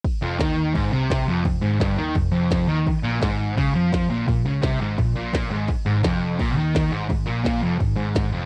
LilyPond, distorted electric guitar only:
\new Staff \with { instrumentName = "Distorted electric guitar" } { \clef bass \time 4/4 \key f \minor \tempo 4 = 170 r8 f,8 ees4 aes,8 c4 f,8 | f,8 aes,8 g,8 ees8 f,8 f,4 ees8 | r8 bes,8 aes,4 des8 f4 bes,8 | bes,8 des8 c8 aes,8 bes,8 bes,4 aes,8 |
r8 aes,8 f,4 bes,8 ees4 aes,8 | aes,8 bes,8 bes,8 f,8 aes,8 aes,4 f,8 | }